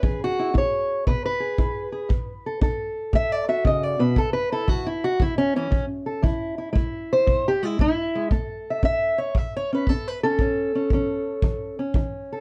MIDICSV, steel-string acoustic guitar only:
0, 0, Header, 1, 2, 480
1, 0, Start_track
1, 0, Key_signature, 3, "major"
1, 0, Tempo, 517688
1, 32, Time_signature, 4, 2, 24, 8
1, 11501, End_track
2, 0, Start_track
2, 0, Title_t, "Steel-string acoustic guitar"
2, 0, Program_c, 0, 25
2, 0, Note_on_c, 0, 71, 101
2, 26, Note_on_c, 0, 52, 70
2, 31, Note_on_c, 0, 68, 46
2, 209, Note_off_c, 0, 71, 0
2, 222, Note_on_c, 0, 66, 99
2, 365, Note_on_c, 0, 64, 53
2, 478, Note_off_c, 0, 52, 0
2, 488, Note_off_c, 0, 64, 0
2, 499, Note_on_c, 0, 64, 67
2, 527, Note_off_c, 0, 66, 0
2, 536, Note_on_c, 0, 73, 82
2, 954, Note_off_c, 0, 64, 0
2, 991, Note_off_c, 0, 73, 0
2, 995, Note_on_c, 0, 71, 93
2, 1009, Note_on_c, 0, 47, 65
2, 1153, Note_off_c, 0, 71, 0
2, 1164, Note_on_c, 0, 71, 93
2, 1289, Note_off_c, 0, 68, 0
2, 1300, Note_on_c, 0, 68, 48
2, 1449, Note_off_c, 0, 47, 0
2, 1468, Note_on_c, 0, 64, 63
2, 1771, Note_off_c, 0, 68, 0
2, 1782, Note_on_c, 0, 68, 49
2, 1918, Note_off_c, 0, 64, 0
2, 1927, Note_off_c, 0, 68, 0
2, 1938, Note_on_c, 0, 50, 76
2, 2283, Note_on_c, 0, 69, 50
2, 2393, Note_off_c, 0, 50, 0
2, 2422, Note_on_c, 0, 62, 67
2, 2432, Note_off_c, 0, 69, 0
2, 2435, Note_on_c, 0, 69, 52
2, 2597, Note_off_c, 0, 71, 0
2, 2875, Note_off_c, 0, 62, 0
2, 2902, Note_on_c, 0, 57, 73
2, 2924, Note_on_c, 0, 76, 115
2, 3079, Note_off_c, 0, 76, 0
2, 3079, Note_on_c, 0, 74, 98
2, 3231, Note_off_c, 0, 74, 0
2, 3231, Note_on_c, 0, 66, 48
2, 3235, Note_on_c, 0, 76, 88
2, 3354, Note_off_c, 0, 57, 0
2, 3377, Note_on_c, 0, 49, 62
2, 3392, Note_off_c, 0, 76, 0
2, 3403, Note_on_c, 0, 75, 97
2, 3553, Note_off_c, 0, 75, 0
2, 3553, Note_on_c, 0, 74, 86
2, 3698, Note_off_c, 0, 49, 0
2, 3702, Note_on_c, 0, 47, 67
2, 3704, Note_off_c, 0, 69, 0
2, 3707, Note_on_c, 0, 71, 96
2, 3711, Note_off_c, 0, 74, 0
2, 3850, Note_off_c, 0, 66, 0
2, 3863, Note_on_c, 0, 45, 81
2, 3865, Note_off_c, 0, 47, 0
2, 3867, Note_off_c, 0, 71, 0
2, 3876, Note_on_c, 0, 69, 98
2, 4012, Note_off_c, 0, 69, 0
2, 4016, Note_on_c, 0, 71, 97
2, 4183, Note_off_c, 0, 71, 0
2, 4191, Note_on_c, 0, 64, 52
2, 4195, Note_on_c, 0, 69, 99
2, 4315, Note_off_c, 0, 45, 0
2, 4335, Note_on_c, 0, 52, 70
2, 4349, Note_off_c, 0, 69, 0
2, 4349, Note_on_c, 0, 66, 91
2, 4507, Note_off_c, 0, 64, 0
2, 4509, Note_off_c, 0, 66, 0
2, 4511, Note_on_c, 0, 64, 82
2, 4670, Note_off_c, 0, 64, 0
2, 4675, Note_on_c, 0, 66, 96
2, 4790, Note_off_c, 0, 52, 0
2, 4832, Note_off_c, 0, 66, 0
2, 4837, Note_on_c, 0, 52, 69
2, 4839, Note_on_c, 0, 64, 100
2, 4984, Note_off_c, 0, 64, 0
2, 4988, Note_on_c, 0, 61, 100
2, 5144, Note_off_c, 0, 52, 0
2, 5145, Note_off_c, 0, 61, 0
2, 5155, Note_on_c, 0, 52, 50
2, 5159, Note_on_c, 0, 61, 91
2, 5288, Note_off_c, 0, 52, 0
2, 5292, Note_on_c, 0, 52, 69
2, 5419, Note_off_c, 0, 61, 0
2, 5620, Note_on_c, 0, 69, 51
2, 5748, Note_off_c, 0, 52, 0
2, 5764, Note_off_c, 0, 69, 0
2, 5772, Note_on_c, 0, 52, 79
2, 5779, Note_on_c, 0, 64, 52
2, 6091, Note_off_c, 0, 64, 0
2, 6102, Note_on_c, 0, 64, 50
2, 6225, Note_off_c, 0, 64, 0
2, 6228, Note_off_c, 0, 52, 0
2, 6237, Note_on_c, 0, 56, 67
2, 6239, Note_on_c, 0, 64, 55
2, 6608, Note_on_c, 0, 72, 104
2, 6701, Note_off_c, 0, 56, 0
2, 6736, Note_on_c, 0, 47, 70
2, 6891, Note_off_c, 0, 64, 0
2, 6917, Note_off_c, 0, 72, 0
2, 6935, Note_on_c, 0, 67, 101
2, 7072, Note_on_c, 0, 56, 53
2, 7103, Note_off_c, 0, 67, 0
2, 7103, Note_on_c, 0, 64, 96
2, 7189, Note_off_c, 0, 47, 0
2, 7225, Note_off_c, 0, 56, 0
2, 7231, Note_off_c, 0, 64, 0
2, 7236, Note_on_c, 0, 56, 71
2, 7242, Note_on_c, 0, 64, 111
2, 7549, Note_off_c, 0, 56, 0
2, 7560, Note_on_c, 0, 56, 54
2, 7693, Note_off_c, 0, 56, 0
2, 7708, Note_off_c, 0, 64, 0
2, 7710, Note_on_c, 0, 57, 70
2, 7712, Note_on_c, 0, 69, 47
2, 8070, Note_on_c, 0, 76, 50
2, 8157, Note_off_c, 0, 57, 0
2, 8189, Note_on_c, 0, 61, 66
2, 8202, Note_off_c, 0, 76, 0
2, 8206, Note_on_c, 0, 76, 110
2, 8510, Note_off_c, 0, 69, 0
2, 8514, Note_on_c, 0, 73, 89
2, 8516, Note_off_c, 0, 76, 0
2, 8636, Note_off_c, 0, 61, 0
2, 8670, Note_off_c, 0, 73, 0
2, 8673, Note_on_c, 0, 52, 66
2, 8691, Note_on_c, 0, 76, 81
2, 8839, Note_off_c, 0, 76, 0
2, 8869, Note_on_c, 0, 73, 100
2, 9008, Note_off_c, 0, 73, 0
2, 9018, Note_on_c, 0, 61, 49
2, 9036, Note_on_c, 0, 71, 82
2, 9119, Note_off_c, 0, 52, 0
2, 9162, Note_off_c, 0, 61, 0
2, 9170, Note_off_c, 0, 71, 0
2, 9170, Note_on_c, 0, 69, 101
2, 9175, Note_on_c, 0, 61, 67
2, 9344, Note_off_c, 0, 69, 0
2, 9344, Note_on_c, 0, 71, 88
2, 9484, Note_off_c, 0, 61, 0
2, 9486, Note_off_c, 0, 71, 0
2, 9489, Note_on_c, 0, 69, 95
2, 9497, Note_on_c, 0, 61, 49
2, 9622, Note_off_c, 0, 61, 0
2, 9644, Note_on_c, 0, 45, 69
2, 9651, Note_on_c, 0, 61, 51
2, 9959, Note_off_c, 0, 61, 0
2, 9970, Note_on_c, 0, 61, 54
2, 10085, Note_off_c, 0, 45, 0
2, 10118, Note_off_c, 0, 61, 0
2, 10135, Note_on_c, 0, 52, 68
2, 10143, Note_on_c, 0, 61, 51
2, 10571, Note_off_c, 0, 52, 0
2, 10605, Note_on_c, 0, 52, 72
2, 10920, Note_off_c, 0, 61, 0
2, 10921, Note_off_c, 0, 69, 0
2, 10931, Note_on_c, 0, 61, 47
2, 11046, Note_off_c, 0, 52, 0
2, 11084, Note_on_c, 0, 52, 65
2, 11428, Note_on_c, 0, 69, 52
2, 11501, Note_off_c, 0, 52, 0
2, 11501, Note_off_c, 0, 61, 0
2, 11501, Note_off_c, 0, 69, 0
2, 11501, End_track
0, 0, End_of_file